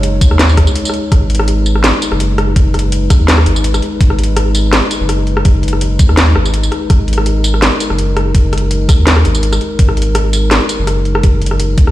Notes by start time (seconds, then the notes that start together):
Already playing: F#1 G#3 D#4 C#5
0.03 closed hi-hat
0.21 D#2, kick, closed hi-hat, tambourine
0.31 cross-stick
0.39 snare, closed hi-hat
0.49 tambourine
0.57 kick, cross-stick, closed hi-hat
0.67 C#2, tambourine
0.76 closed hi-hat
0.85 tambourine
0.89 cross-stick
0.94 closed hi-hat
1.12 G#1 B4, kick, cross-stick, closed hi-hat
1.30 closed hi-hat
1.35 closed hi-hat
1.39 cross-stick
1.48 closed hi-hat
1.66 tambourine
1.75 cross-stick
1.84 snare, closed hi-hat
2.02 closed hi-hat, tambourine
2.12 F#1, cross-stick
2.20 closed hi-hat
2.38 cross-stick, closed hi-hat
2.56 kick, closed hi-hat
2.74 cross-stick, closed hi-hat
2.79 closed hi-hat
2.92 closed hi-hat
3.10 D#2, kick, cross-stick, closed hi-hat, tambourine
3.28 snare, closed hi-hat
3.38 cross-stick
3.46 G#1, closed hi-hat
3.56 tambourine
3.64 closed hi-hat
3.74 cross-stick, tambourine
3.82 closed hi-hat
4.01 G#1, kick, closed hi-hat
4.10 cross-stick
4.19 closed hi-hat
4.23 closed hi-hat
4.37 cross-stick, closed hi-hat
4.55 closed hi-hat, tambourine
4.73 cross-stick, snare, closed hi-hat
4.91 closed hi-hat, tambourine
5.01 F#1
5.09 cross-stick, closed hi-hat
5.27 closed hi-hat
5.37 cross-stick
5.45 kick, closed hi-hat
5.63 closed hi-hat
5.68 closed hi-hat
5.73 cross-stick
5.81 closed hi-hat
5.99 D#2, kick, closed hi-hat, tambourine
6.09 cross-stick
6.17 snare, closed hi-hat
6.36 G#1, cross-stick
6.45 tambourine
6.54 closed hi-hat
6.63 tambourine
6.72 cross-stick, closed hi-hat
6.90 G#1 A#4, kick, cross-stick, closed hi-hat
7.08 closed hi-hat
7.13 closed hi-hat
7.18 cross-stick
7.26 closed hi-hat
7.44 closed hi-hat, tambourine
7.54 cross-stick
7.62 snare, closed hi-hat
7.80 closed hi-hat, tambourine
7.90 F#1, cross-stick
7.98 closed hi-hat
8.17 cross-stick, closed hi-hat
8.35 kick, closed hi-hat
8.53 cross-stick, closed hi-hat
8.58 closed hi-hat
8.71 closed hi-hat
8.89 D#2, kick, cross-stick, closed hi-hat, tambourine
9.07 snare, closed hi-hat
9.16 cross-stick
9.25 G#1, closed hi-hat
9.35 tambourine
9.43 closed hi-hat
9.53 cross-stick, tambourine
9.61 closed hi-hat
9.79 G#1, kick, closed hi-hat
9.89 cross-stick
9.97 closed hi-hat
10.02 closed hi-hat
10.15 cross-stick, closed hi-hat
10.33 closed hi-hat, tambourine
10.51 cross-stick, snare, closed hi-hat
10.69 closed hi-hat, tambourine
10.79 F#1
10.87 cross-stick, closed hi-hat
11.05 closed hi-hat
11.15 cross-stick
11.23 kick, closed hi-hat
11.42 closed hi-hat
11.46 closed hi-hat
11.51 cross-stick
11.60 closed hi-hat
11.78 D#2, kick, closed hi-hat
11.87 cross-stick